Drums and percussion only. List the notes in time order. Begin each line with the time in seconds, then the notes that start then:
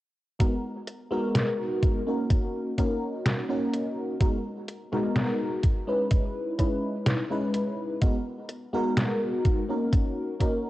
0.40 kick, closed hi-hat
0.87 closed hi-hat
1.35 snare, closed hi-hat
1.83 kick, closed hi-hat
2.30 kick, closed hi-hat
2.78 kick, closed hi-hat
3.26 snare, closed hi-hat
3.74 closed hi-hat
4.21 kick, closed hi-hat
4.68 closed hi-hat
4.93 snare
5.16 snare, closed hi-hat
5.63 kick, closed hi-hat
6.11 kick, closed hi-hat
6.59 kick, closed hi-hat
7.06 snare, closed hi-hat
7.54 closed hi-hat
8.02 kick, closed hi-hat
8.49 closed hi-hat
8.97 snare, closed hi-hat
9.45 kick, closed hi-hat
9.92 kick, closed hi-hat
10.40 kick, closed hi-hat